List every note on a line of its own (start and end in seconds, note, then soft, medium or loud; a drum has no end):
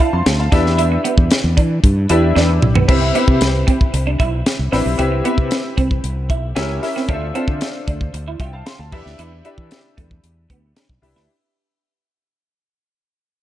0.00 0.52 D4 medium
0.00 0.55 F4 medium
0.00 0.54 A4 medium
0.00 0.54 C5 medium
0.00 0.53 E5 loud
0.00 0.13 F5 medium
0.00 0.12 A5 medium
0.00 kick medium
0.00 closed hi-hat medium
0.13 0.24 F2 medium
0.13 0.38 A5 medium
0.13 0.38 C6 medium
0.26 0.48 D2 medium
0.26 snare loud
0.26 closed hi-hat medium
0.39 0.65 F5 medium
0.39 0.64 A5 medium
0.52 0.96 E2 medium
0.52 1.36 D4 medium
0.52 0.62 D4 medium
0.52 1.36 E4 medium
0.52 1.36 G4 medium
0.52 1.37 B4 medium
0.52 1.37 E5 loud
0.52 kick loud
0.52 snare soft
0.52 closed hi-hat medium
0.66 snare soft
0.78 0.89 E4 medium
0.78 closed hi-hat medium
0.92 muted clean electric guitar stroke soft
1.04 1.15 B3 medium
1.04 closed hi-hat medium
1.18 1.29 E2 loud
1.18 kick medium
1.31 snare loud
1.31 closed hi-hat loud
1.44 1.55 E2 loud
1.57 1.79 E3 medium
1.57 1.67 D4 medium
1.57 kick medium
1.57 closed hi-hat medium
1.83 2.05 G2 medium
1.83 kick medium
1.83 closed hi-hat medium
2.09 2.32 E2 medium
2.09 2.60 D4 medium
2.09 2.20 E4 medium
2.09 2.60 E4 medium
2.09 2.60 G4 medium
2.09 2.61 B4 medium
2.09 2.61 E5 medium
2.09 closed hi-hat medium
2.35 2.58 E2 medium
2.35 2.46 D4 medium
2.35 snare medium
2.49 muted clean electric guitar stroke soft
2.62 2.85 B1 medium
2.62 mid tom medium
2.75 2.86 B3 medium
2.75 floor tom medium
2.88 3.10 C2 medium
2.88 3.05 C4 medium
2.88 2.99 C4 medium
2.88 3.05 E4 medium
2.88 3.05 G4 medium
2.88 3.06 B4 medium
2.88 3.06 E5 medium
2.88 kick loud
2.88 crash medium
3.02 muted clean electric guitar stroke soft
3.15 3.25 B3 medium
3.15 3.82 C4 medium
3.15 3.82 E4 medium
3.15 3.82 G4 medium
3.15 3.82 B4 medium
3.15 3.82 E5 medium
3.15 closed hi-hat medium
3.28 3.39 C3 medium
3.28 kick loud
3.41 3.63 C2 loud
3.41 snare loud
3.41 closed hi-hat loud
3.67 3.77 C4 medium
3.67 kick medium
3.67 closed hi-hat medium
3.81 kick medium
3.94 4.15 C2 medium
3.94 muted clean electric guitar stroke soft
3.94 closed hi-hat medium
4.07 4.17 D4 medium
4.20 4.42 B1 medium
4.20 4.30 E4 medium
4.20 kick medium
4.20 closed hi-hat medium
4.46 snare loud
4.46 closed hi-hat medium
4.59 4.70 C2 medium
4.72 4.83 A1 loud
4.72 4.89 C4 medium
4.72 4.83 D4 medium
4.72 4.89 E4 medium
4.72 4.89 G4 medium
4.72 4.89 B4 medium
4.72 4.90 E5 medium
4.72 snare soft
4.72 open hi-hat medium
4.86 4.97 B1 medium
4.98 5.21 C2 loud
4.98 5.15 C4 medium
4.98 5.09 C4 medium
4.98 5.15 E4 medium
4.98 5.15 G4 medium
4.98 5.16 B4 medium
4.98 5.16 E5 medium
4.98 closed hi-hat medium
5.12 muted clean electric guitar stroke soft
5.24 5.35 B3 medium
5.24 5.92 C4 medium
5.24 5.92 E4 medium
5.24 5.92 G4 medium
5.24 5.92 B4 medium
5.24 5.92 E5 medium
5.24 closed hi-hat medium
5.38 5.49 C3 loud
5.38 kick loud
5.51 snare loud
5.51 closed hi-hat medium
5.77 5.99 C2 medium
5.77 5.88 C4 medium
5.77 kick medium
5.77 closed hi-hat medium
5.91 kick medium
6.04 6.29 C2 medium
6.04 closed hi-hat medium
6.29 6.51 B1 medium
6.29 6.40 E4 medium
6.29 kick medium
6.29 closed hi-hat medium
6.55 6.78 C#2 loud
6.55 6.77 C#4 medium
6.55 6.66 C#4 medium
6.55 6.77 E4 medium
6.55 6.77 G4 medium
6.55 6.77 A#4 medium
6.55 6.77 E5 loud
6.55 snare loud
6.55 closed hi-hat medium
6.70 muted clean electric guitar stroke soft
6.82 6.99 C#4 medium
6.82 6.99 E4 medium
6.82 6.99 G4 medium
6.82 6.99 A#4 medium
6.82 6.99 E5 medium
6.82 snare soft
6.82 open hi-hat medium
6.96 7.06 C4 medium
6.96 snare soft
7.08 7.30 D2 loud
7.08 7.25 D4 medium
7.08 7.19 D4 medium
7.08 7.25 F4 medium
7.08 7.25 A4 medium
7.08 7.26 C5 medium
7.08 7.26 E5 loud
7.08 kick loud
7.08 closed hi-hat medium
7.22 muted clean electric guitar stroke soft
7.34 7.45 C4 medium
7.34 8.02 D4 medium
7.34 8.02 F4 medium
7.34 8.02 A4 medium
7.34 8.02 C5 medium
7.34 8.02 E5 medium
7.34 closed hi-hat medium
7.48 7.59 D3 loud
7.48 kick loud
7.61 snare loud
7.61 closed hi-hat medium
7.87 8.09 D2 medium
7.87 7.98 D4 medium
7.87 kick medium
7.87 closed hi-hat medium
8.01 kick medium
8.14 8.35 D2 medium
8.14 muted clean electric guitar stroke soft
8.14 closed hi-hat medium
8.28 8.38 E4 medium
8.40 8.62 C2 medium
8.40 8.50 F4 medium
8.40 8.53 E5 medium
8.40 8.52 G5 medium
8.40 kick medium
8.40 closed hi-hat medium
8.53 8.66 F5 medium
8.53 8.65 A5 medium
8.66 8.78 A5 medium
8.66 8.79 C6 medium
8.66 snare loud
8.66 closed hi-hat medium
8.79 8.92 D2 medium
8.79 9.04 F5 medium
8.79 9.04 A5 medium
8.92 9.03 E2 medium
8.92 9.34 D4 medium
8.92 9.34 E4 medium
8.92 9.03 E4 medium
8.92 9.34 G4 medium
8.92 9.35 B4 medium
8.92 9.35 E5 loud
8.92 kick loud
8.92 crash medium
9.06 9.17 D2 medium
9.06 snare soft
9.19 9.41 E2 medium
9.19 9.29 E4 medium
9.19 closed hi-hat medium
9.32 muted clean electric guitar stroke soft
9.45 10.12 D4 medium
9.45 9.55 D4 medium
9.45 10.12 E4 medium
9.45 10.12 G4 medium
9.45 10.12 B4 medium
9.45 10.12 E5 loud
9.45 closed hi-hat medium
9.58 9.69 E3 medium
9.58 kick medium
9.71 snare loud
9.71 closed hi-hat loud
9.97 10.20 E2 medium
9.97 10.08 A3 medium
9.97 kick medium
9.97 closed hi-hat medium
10.11 kick medium
10.24 10.46 E2 medium
10.24 closed hi-hat medium
10.50 10.72 D2 medium
10.50 10.60 B3 medium
10.50 kick medium
10.50 closed hi-hat medium
10.76 10.87 D4 medium
10.76 snare loud
10.76 closed hi-hat medium
10.89 11.00 B1 medium
10.89 muted clean electric guitar stroke soft
10.89 kick medium
11.02 11.13 C2 loud
11.02 11.19 D4 medium
11.02 11.19 E4 medium
11.02 11.19 G4 medium
11.02 11.19 B4 medium
11.02 11.20 E5 medium
11.02 open hi-hat medium
11.15 11.26 D2 medium
11.15 11.26 E4 medium
11.15 snare soft